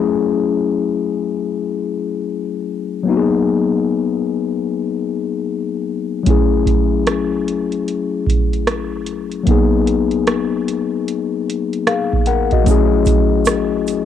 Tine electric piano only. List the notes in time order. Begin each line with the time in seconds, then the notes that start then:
Already playing: F#3 A3 C#4 E4 G#4
3.03 F#3 A#3 B3
3.09 D#4 F#4
3.17 G#4
6.23 F#3 A3 C#4
6.29 E4 G#4
9.43 F#3 A#3 B3
9.49 D#4 G#4
11.87 G#4 F5
12.27 A#4 F#5
12.53 F#4 D#5
12.64 F#3 A3 C#4
12.69 E4 G#4